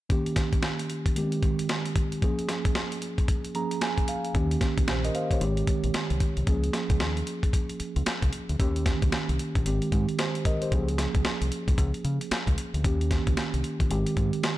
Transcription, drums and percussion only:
0.10 kick, closed hi-hat
0.26 closed hi-hat
0.36 kick, snare, closed hi-hat
0.53 kick, closed hi-hat
0.62 snare, closed hi-hat
0.79 closed hi-hat
0.90 closed hi-hat
1.06 kick, closed hi-hat
1.16 closed hi-hat
1.32 closed hi-hat
1.43 kick, closed hi-hat
1.59 closed hi-hat
1.69 snare, closed hi-hat
1.86 closed hi-hat
1.96 kick, closed hi-hat
2.12 closed hi-hat
2.22 kick, closed hi-hat
2.39 closed hi-hat
2.49 snare, closed hi-hat
2.65 kick, closed hi-hat
2.75 snare, closed hi-hat
2.92 closed hi-hat
3.02 closed hi-hat
3.18 kick, closed hi-hat
3.28 kick, closed hi-hat
3.45 closed hi-hat
3.55 closed hi-hat
3.71 closed hi-hat
3.81 snare, closed hi-hat
3.98 kick, closed hi-hat
4.08 closed hi-hat
4.25 closed hi-hat
4.35 kick, closed hi-hat
4.51 closed hi-hat
4.61 kick, snare, closed hi-hat
4.78 kick, closed hi-hat
4.88 snare, closed hi-hat
5.05 closed hi-hat
5.15 closed hi-hat
5.31 kick, closed hi-hat
5.41 closed hi-hat
5.57 closed hi-hat
5.67 kick, closed hi-hat
5.84 closed hi-hat
5.94 snare, closed hi-hat
6.10 closed hi-hat
6.20 kick, closed hi-hat
6.37 closed hi-hat
6.47 kick, closed hi-hat
6.64 closed hi-hat
6.73 snare, closed hi-hat
6.90 kick, closed hi-hat
7.00 snare, closed hi-hat
7.17 closed hi-hat
7.27 closed hi-hat
7.43 kick, closed hi-hat
7.53 kick, closed hi-hat
7.69 closed hi-hat
7.80 closed hi-hat
7.96 closed hi-hat
8.06 snare, closed hi-hat
8.22 kick, closed hi-hat
8.33 closed hi-hat
8.49 closed hi-hat
8.60 kick, closed hi-hat
8.76 closed hi-hat
8.86 kick, snare, closed hi-hat
9.02 kick, closed hi-hat
9.12 snare, closed hi-hat
9.29 closed hi-hat
9.39 closed hi-hat
9.55 kick, closed hi-hat
9.66 closed hi-hat
9.82 closed hi-hat
9.92 kick, closed hi-hat
10.09 closed hi-hat
10.19 snare, closed hi-hat
10.35 closed hi-hat
10.45 kick, closed hi-hat
10.62 closed hi-hat
10.72 kick, closed hi-hat
10.88 closed hi-hat
10.98 snare, closed hi-hat
11.15 kick, closed hi-hat
11.25 snare, closed hi-hat
11.42 closed hi-hat
11.52 closed hi-hat
11.68 kick, closed hi-hat
11.78 kick, closed hi-hat
11.94 closed hi-hat
12.05 closed hi-hat
12.21 closed hi-hat
12.31 snare, closed hi-hat
12.47 kick, closed hi-hat
12.58 closed hi-hat
12.74 closed hi-hat
12.84 kick, closed hi-hat
13.01 closed hi-hat
13.11 kick, snare, closed hi-hat
13.27 kick, closed hi-hat
13.37 snare, closed hi-hat
13.54 closed hi-hat
13.64 closed hi-hat
13.80 kick, closed hi-hat
13.91 closed hi-hat
14.06 closed hi-hat
14.17 kick, closed hi-hat
14.33 closed hi-hat
14.43 snare, closed hi-hat

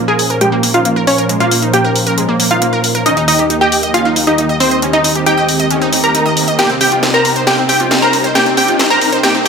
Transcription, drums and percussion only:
0.19 open hi-hat
0.30 closed hi-hat
0.41 closed hi-hat
0.63 open hi-hat
0.74 closed hi-hat
0.85 closed hi-hat
1.07 open hi-hat
1.18 closed hi-hat
1.29 closed hi-hat
1.40 closed hi-hat
1.51 open hi-hat
1.62 closed hi-hat
1.74 closed hi-hat
1.96 open hi-hat
2.07 closed hi-hat
2.18 closed hi-hat
2.40 open hi-hat
2.51 closed hi-hat
2.62 closed hi-hat
2.84 open hi-hat
2.95 closed hi-hat
3.06 closed hi-hat
3.17 closed hi-hat
3.28 open hi-hat
3.39 closed hi-hat
3.50 closed hi-hat
3.72 open hi-hat
3.83 closed hi-hat
3.94 closed hi-hat
4.16 open hi-hat
4.27 closed hi-hat
4.38 closed hi-hat
4.60 open hi-hat
4.71 closed hi-hat
4.82 closed hi-hat
4.93 closed hi-hat
5.04 open hi-hat
5.15 closed hi-hat
5.26 closed hi-hat
5.49 open hi-hat
5.60 closed hi-hat
5.71 closed hi-hat
5.82 closed hi-hat
5.93 open hi-hat
6.04 closed hi-hat
6.15 closed hi-hat
6.37 open hi-hat
6.48 closed hi-hat
6.59 snare, closed hi-hat
6.70 closed hi-hat
6.81 open hi-hat
6.92 closed hi-hat
7.03 snare, closed hi-hat
7.25 open hi-hat
7.36 closed hi-hat
7.47 snare, closed hi-hat
7.69 open hi-hat
7.80 closed hi-hat
7.91 snare, closed hi-hat
8.13 open hi-hat
8.24 closed hi-hat
8.35 snare, closed hi-hat
8.46 closed hi-hat
8.57 open hi-hat
8.68 closed hi-hat
8.79 snare, closed hi-hat
9.01 open hi-hat
9.13 closed hi-hat
9.23 snare, closed hi-hat

